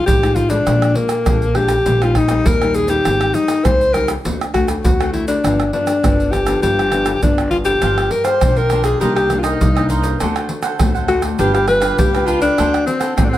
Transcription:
Already playing: F3 G#3 D#4
0.06 A1 C3 G4, pandeiro, shaker, surdo
0.22 F3 G#3 D#4, pandeiro, tamborim, shaker
0.36 F4, pandeiro, shaker
0.50 F3 G#3 D4, pandeiro, shaker
0.66 A#1 A#2, pandeiro, tamborim, shaker, surdo
0.82 pandeiro, tamborim, shaker
0.95 A#3, pandeiro
1.09 pandeiro, tamborim, shaker
1.26 A#1 F2 F3 G#3 D4, pandeiro, tamborim, shaker, surdo
1.42 pandeiro, shaker
1.55 F3 G#3 D4 G4, pandeiro, tamborim
1.68 pandeiro, tamborim, shaker
1.86 A#1 A#2 G3 C4 D#4, pandeiro, shaker, surdo
2.02 G3 C4 D#4 F4, pandeiro, tamborim, shaker
2.15 G3 C4 D#4, pandeiro, tamborim, surdo
2.29 G3 C4 D#4, pandeiro, tamborim, shaker
2.46 D#2 A#2 A#4, pandeiro, shaker, surdo
2.62 G3 C4 D#4, pandeiro, tamborim, shaker
2.74 G#4, pandeiro, shaker
2.88 G3 C4 D#4 G4, pandeiro, shaker
3.05 G#1 G#2, pandeiro, tamborim, shaker, surdo
3.21 pandeiro, tamborim, shaker
3.34 D#4, pandeiro, shaker
3.48 pandeiro, tamborim, shaker
3.65 C#2 D#3 G3 C4 D#4 C5, pandeiro, tamborim, shaker, surdo
3.81 pandeiro, shaker
3.93 G3 C4 D#4 A#4, pandeiro, tamborim, shaker
4.08 pandeiro, tamborim, shaker
4.25 D2 D3 A3 C4 F#4, pandeiro, shaker, surdo
4.41 pandeiro, tamborim, shaker
4.54 A3 C4 F#4, pandeiro, tamborim, surdo
4.68 pandeiro, tamborim, shaker
4.84 D2 F#4, pandeiro, shaker, surdo
5.00 A3 C4 F#4, pandeiro, tamborim, shaker
5.13 E4, pandeiro
5.28 D4, pandeiro, shaker
5.44 G1 G2 F3 B3 D4, pandeiro, tamborim, shaker, surdo
5.60 pandeiro, tamborim, shaker
5.73 F3 B3 D4, pandeiro
5.87 pandeiro, tamborim, shaker
6.03 G1 D3 F3 B3 D4, pandeiro, tamborim, shaker, surdo
6.20 pandeiro, shaker
6.32 G4, pandeiro, tamborim, shaker
6.46 F3 B3 D4, pandeiro, tamborim, shaker
6.63 G1 G2 G4, pandeiro, shaker, surdo
6.79 pandeiro, tamborim, shaker
6.92 F3 B3 D4, pandeiro, tamborim, shaker
7.06 pandeiro, tamborim, shaker
7.22 G1 D3 F3 B3 D4, pandeiro, shaker, surdo
7.38 pandeiro, tamborim, shaker
7.51 F4, pandeiro
7.65 F3 C4 D4 G4, pandeiro, shaker
7.81 G1 G2 D4 G4 C5 F5, pandeiro, tamborim, shaker, surdo
7.98 G4 C5 F5, pandeiro, tamborim, shaker
8.10 A#4, muted cavaquinho stroke, pandeiro
8.24 G4 C5 F5, pandeiro, tamborim, shaker
8.41 B1 D3 F3 C4 D4, pandeiro, tamborim, shaker, surdo
8.56 G4 A#4 C5 F5, pandeiro, shaker
8.69 F3 C4 D4 G4 C5 F5, pandeiro, tamborim, shaker
8.84 G#4, pandeiro, tamborim, shaker
9.00 C2 C3 D#3 A#3 D4 D#4 G4 A#4 C5 D#5, pandeiro, shaker, surdo
9.16 G4 A#4 C5 D#5, pandeiro, tamborim, shaker
9.30 D#3 A#3 D4, muted cavaquinho stroke, pandeiro, tamborim, shaker
9.39 F4 D#5
9.43 D#4 A#4 C5, pandeiro, tamborim, shaker
9.61 C2 G2, pandeiro, shaker, surdo
9.75 D#3 A#3 D4 A#4 C5 D#5, pandeiro, tamborim, shaker
9.89 D#4 A#4 C5 D#5, pandeiro, shaker
10.02 A#4 C5 D#5, pandeiro, shaker
10.20 D2 D3 A3 C4 D4 F#4 A4 C5 F#5, pandeiro, tamborim, shaker, surdo
10.36 A4 C5 F#5, pandeiro, tamborim, shaker
10.49 muted cavaquinho stroke, pandeiro
10.62 A4 C5 F#5, pandeiro, tamborim, shaker
10.79 D2 A2 A3 C4 F#4, pandeiro, tamborim, shaker, surdo
10.95 A4 C5 F#5, pandeiro, shaker
11.08 A3 C4 D4 F#4 A4 C5 F#5, pandeiro, tamborim
11.22 pandeiro, tamborim, shaker
11.38 G1 G3 D4 F4 G4 B4 F5, pandeiro, shaker, surdo
11.54 G4 B4 F5, pandeiro, tamborim, shaker
11.66 D4 F4 B4, muted cavaquinho stroke, pandeiro, tamborim
11.80 D4 F4 G4 B4 F5, pandeiro, tamborim, shaker
11.98 C#2 G4, pandeiro, shaker, surdo
12.13 D4 F4 G4 B4 F5, pandeiro, tamborim, shaker
12.26 D4 F4 G4 B4 F5, pandeiro, shaker
12.41 D4 G4 B4 F5, pandeiro, shaker
12.58 D2 D3 A3 C4 D4 F#4 A4 C5 F#5, pandeiro, tamborim, shaker, surdo
12.73 A4 C5 F#5, pandeiro, tamborim, shaker
12.86 C4, muted cavaquinho stroke, pandeiro, shaker
13.00 A4 C5 F#5, pandeiro, tamborim, shaker
13.16 A1 A2 A3 C4 F#4, pandeiro, tamborim, shaker, surdo
13.25 D4
13.29 C4
13.33 C5 F#5, pandeiro, shaker

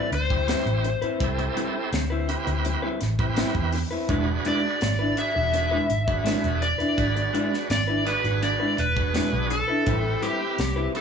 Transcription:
Already playing: G3 C4 E4 B4
0.12 D2 C5, muted clean electric guitar stroke, closed hi-hat
0.30 C4 E4 G4 C5, kick
0.48 G3 C4 E4 B4, snare, closed hi-hat
0.66 A1, muted clean electric guitar stroke, closed hi-hat
0.84 muted clean electric guitar stroke, closed hi-hat
1.02 C4 E4 B4, muted fingered electric bass stroke, closed hi-hat
1.20 C2 C4 E4 G4 A4, kick, closed hi-hat
1.38 muted clean electric guitar stroke, closed hi-hat
1.56 G3 C4 E4 B4, closed hi-hat
1.74 muted clean electric guitar stroke
1.93 D2, snare, closed hi-hat
2.10 C4 E4 B4
2.28 C4 E4 G4 B4, muted clean electric guitar stroke, closed hi-hat
2.47 D2, muted clean electric guitar stroke, closed hi-hat
2.65 muted clean electric guitar stroke, closed hi-hat
2.82 G3 C4 E4 B4
3.01 A1, muted clean electric guitar stroke, snare, closed hi-hat
3.19 C4 E4 G4 B4, kick
3.36 G3 C4 E4 B4, snare, closed hi-hat
3.55 E2, muted clean electric guitar stroke, kick
3.72 muted clean electric guitar stroke, open hi-hat
3.91 C4 E4 B4
4.09 E1 G#3 D4 E4 F#4 G#4 B4, kick, closed hi-hat
4.28 muted clean electric guitar stroke
4.45 G#3 D4 E4 B4 D5, closed hi-hat
4.63 muted clean electric guitar stroke
4.81 G#1, snare, closed hi-hat
4.99 D4 E4 B4
5.17 D4 F#4 G#4 B4 E5, muted clean electric guitar stroke, closed hi-hat
5.35 E1, muted clean electric guitar stroke
5.53 muted clean electric guitar stroke, closed hi-hat
5.71 G#3 D4 E4 B4
5.89 G#1, muted clean electric guitar stroke, closed hi-hat
6.07 D4 F#4 G#4 B4, kick
6.24 G#3 D4 E4 B4, snare, closed hi-hat
6.43 E1, muted clean electric guitar stroke, closed hi-hat
6.61 D5, muted clean electric guitar stroke, closed hi-hat
6.78 D4 E4 B4, muted fingered electric bass stroke, closed hi-hat
6.97 G#1 D4 F#4 G#4 B4, kick, closed hi-hat
7.15 muted clean electric guitar stroke, closed hi-hat
7.33 G#3 D4 E4 B4, closed hi-hat
7.52 muted clean electric guitar stroke, snare
7.70 G#1 D5, snare, closed hi-hat
7.87 D4 E4 B4
8.05 D4 F#4 G#4 B4, muted clean electric guitar stroke, closed hi-hat
8.24 G#1, muted clean electric guitar stroke, closed hi-hat
8.42 D5, muted clean electric guitar stroke, closed hi-hat
8.59 G#3 D4 E4 B4
8.78 E1 B4, muted clean electric guitar stroke, closed hi-hat
8.96 D4 F#4 G#4 B4, kick
9.13 G#3 D4 E4 B4, snare, closed hi-hat
9.32 B1, muted clean electric guitar stroke
9.50 A4, muted clean electric guitar stroke, closed hi-hat
9.68 D4 E4 B4
9.86 A1 G3 C4 E4 G4 B4, kick, closed hi-hat
10.04 muted clean electric guitar stroke
10.22 G3 C4 E4 G4 B4, closed hi-hat
10.40 muted clean electric guitar stroke
10.58 C2, snare, closed hi-hat
10.76 C4 E4 B4
10.95 C4 E4 G4 A4, muted clean electric guitar stroke, closed hi-hat

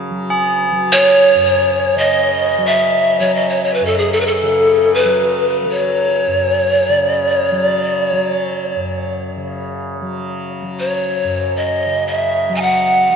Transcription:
Already playing: F#2 C#3 F#3
0.11 F#3
0.30 G#4
0.71 F#3
0.92 C#5
1.35 F#2
1.96 C#3 D#5
2.58 F#3
2.66 E5
3.20 F#3 C#5
3.35 D#5
3.50 C#5
3.64 C#5
3.74 B4
3.81 F#2
3.86 A4
3.98 G#4
4.13 A4
4.21 B4
4.26 A4
4.42 C#3
4.94 B4
5.04 F#3
5.66 F#3
5.72 C#5
6.27 F#2
6.89 C#3
6.97 D5
7.31 C#5
7.52 F#3
7.68 D5
8.02 C#5
8.12 F#3
8.76 F#2
9.36 C#3
10.02 F#3
10.62 F#3
10.80 C#5
11.24 F#2
11.56 D#5
11.86 C#3
12.07 E5
12.49 F#3
12.55 G#5
12.62 F#5
13.10 F#3

